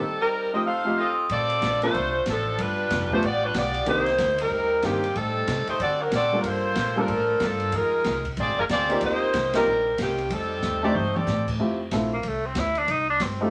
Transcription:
Already playing: saxophone section G3 C4 D#4 A4
0.20 saxophone section G3 C4 D#4 A#4
0.53 grand piano F3 A3 C4 D#4 G4, saxophone section C4 G4 A#4 D#5
0.66 saxophone section D#4 A4 C5 F5
0.85 grand piano F3 A3 C4 D#4 G4
0.97 saxophone section C4 F4 A4 D#5, trumpet section F4 A4 C5 D#5
1.29 upright bass A#2, saxophone section C4 F4 A4 D5, kick, ride
1.50 ride
1.62 upright bass A#1, kick, snare, hi-hat pedal, ride
1.82 grand piano F3 A#3 C4 D4 A4, saxophone section A3 D4 F4 C5, ride
1.94 upright bass C2, kick, ride
2.26 upright bass A1, kick, snare, hi-hat pedal, ride
2.30 saxophone section F3 C4 D4 A4
2.58 upright bass G1, saxophone section G3 D4 F4 B4, kick, ride
2.90 upright bass F1, kick, snare, hi-hat pedal, ride
3.11 grand piano F3 A3 B3 D4 G4, saxophone section A3 D4 F4 C5, kick
3.22 upright bass A1, saxophone section B3 F4 G4 D5, kick, ride
3.44 saxophone section G3 D4 F4 B4
3.54 upright bass B1, saxophone section B3 F4 G4 D5, kick, snare, hi-hat pedal, ride
3.74 ride
3.86 upright bass C2, grand piano D#3 A#3 C4 D4 G4, saxophone section A#3 D#4 G4 C5, kick, ride
4.06 snare, ride
4.18 upright bass D2, kick, snare, hi-hat pedal, ride
4.38 saxophone section G3 C4 D#4 A#4, ride
4.51 upright bass D#2, kick
4.82 upright bass G2, grand piano D#3 A#3 C4 D4 G4, saxophone section D#3 A#3 C4 G4, kick, snare, hi-hat pedal, ride
5.04 ride
5.15 upright bass A2, saxophone section G3 C4 D#4 A4, kick, ride
5.47 upright bass C3, kick, snare, hi-hat pedal, ride
5.67 saxophone section A3 D#4 G4 C5, muted upright bass stroke, ride
5.79 upright bass D3, saxophone section C4 F#4 A4 D5, kick, ride
6.01 saxophone section F#3 C4 D4 A#4
6.12 upright bass A#2, saxophone section A4 D5, kick, snare, hi-hat pedal, ride
6.16 saxophone section C4 F#4
6.32 grand piano G3 A#3 D4 F4 A4
6.41 upright bass G2, saxophone section A#4, kick, ride
6.47 saxophone section A#3 F4 A4 C5
6.75 upright bass A#2, kick, snare, hi-hat pedal, ride
6.96 saxophone section F3 D4 A4 A#4, grand piano G3 A#3 D4 F4 A4
7.08 upright bass A2, kick, ride
7.40 upright bass G2, saxophone section F3 A#3 D4 A4, kick, snare, hi-hat pedal, ride
7.60 ride
7.72 upright bass F2, saxophone section G#3 D#4 F4 A#4, kick, ride
8.04 upright bass C2, kick, snare, hi-hat pedal, ride
8.25 kick, ride
8.37 upright bass A#1, saxophone section C4 F4 G#4 D5, ride
8.48 upright bass G#1
8.58 upright bass F1, saxophone section G#3 D4 F4 A#4
8.69 upright bass D2, saxophone section C4 F4 G#4 D5, kick, snare, hi-hat pedal, ride
8.89 grand piano A#3 C4 D#4 F4 G4, ride
9.01 upright bass D#2, saxophone section A#3 D#4 G4 C5, kick, ride
9.33 upright bass C2, kick, snare, hi-hat pedal, ride
9.53 saxophone section G3 C4 D#4 A#4, grand piano A#3 C4 D#4 F4 G4, snare, ride
9.66 upright bass A#1
9.98 upright bass C2, saxophone section D#3 A#3 C4 G4, kick, snare, hi-hat pedal, ride
10.18 ride
10.30 upright bass F2, saxophone section G3 C4 D#4 A4, kick, ride
10.62 upright bass D#2, snare, hi-hat pedal
10.83 grand piano A3 C4 D4 D#4 G4, saxophone section C4 G4 A4 D5, high tom
10.95 upright bass G2, saxophone section A3 D#4 G4 C5, mid tom
11.16 saxophone section C4 G4 A4 D5, mid tom
11.27 upright bass A2, snare, hi-hat pedal
11.47 kick, crash
11.59 upright bass F2, grand piano A3 C4 E4 F4 G4, kick
11.91 upright bass A#1, grand piano A3 C4 E4 F4 A4, kick, snare, hi-hat pedal, ride
12.13 tenor saxophone A#3
12.23 upright bass C2, kick, ride
12.28 tenor saxophone A3
12.46 tenor saxophone C4
12.55 upright bass D2, kick, snare, hi-hat pedal, ride
12.59 tenor saxophone E4
12.75 tenor saxophone D4, ride
12.88 upright bass C2, tenor saxophone D#4, kick, ride
13.10 tenor saxophone D4
13.20 upright bass G1, tenor saxophone C4, kick, snare, hi-hat pedal, ride
13.41 grand piano A3 C4 D#4 F4 G4, tenor saxophone A3

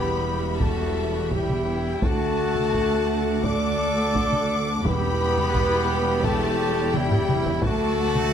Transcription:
Already playing: double bass section E1, cello section E2, viola section G3 G4, trombone section B3, trumpet section G4, french horn section B4, violin section E5 B5, flute B5
0.60 trombone section A3, trumpet section F#4, french horn section A4, flute A5, violin section A5, taiko
1.31 trombone section G3, trumpet section E4, french horn section G4, violin section G5, flute G5, taiko
1.50 taiko mid
2.01 cello section D2, double bass section D2, trombone section A3, viola section A3 F#4, trumpet section F#4, french horn section A4, violin section F#5 A5 D6, flute A5, taiko
2.55 taiko mid
2.73 taiko
3.43 trombone section D4, trumpet section A4, french horn section D5, flute D6, violin section D6, taiko
4.15 taiko
4.32 taiko mid
4.84 double bass section E1, timpani E2, cello section E2, viola section G3 E4, trombone section B3, trumpet section G4, french horn section B4, violin section G5 B5, flute B5, taiko
5.38 taiko mid
5.55 taiko
6.22 trombone section A3, trumpet section G4, french horn section A4, violin section A5, flute A5, taiko
6.91 trombone section G3, trumpet section E4, french horn section G4, violin section G5, flute G5, taiko mid
7.11 taiko low-mid
7.29 taiko mid
7.46 taiko low
7.63 double bass section D2, cello section D2, viola section F#3 F#4, trombone section A3, trumpet section F#4, french horn section A4, violin section A5 D6, flute A5, taiko
8.15 taiko mid

